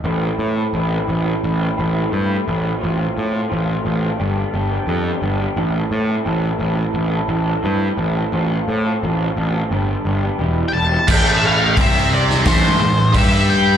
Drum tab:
CC |----------------|----------------|----------------|----------------|
HH |----------------|----------------|----------------|----------------|
SD |----------------|----------------|----------------|----------------|
BD |----------------|----------------|----------------|----------------|

CC |x---------------|
HH |----o---o---o---|
SD |-------oo-------|
BD |o---o---o---o---|